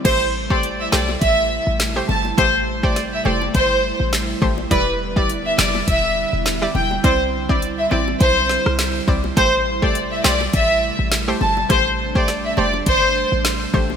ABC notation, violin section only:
X:1
M:4/4
L:1/16
Q:"Swing 16ths" 1/4=103
K:Am
V:1 name="Violin section"
c z2 d z e d z e3 z3 a z | c z2 d z e d z c3 z4 z | B z2 d z e d z e3 z3 g z | c z2 d z e d z c3 z4 z |
c z2 d z e d z e3 z3 a z | c z2 d z e d z c3 z4 z |]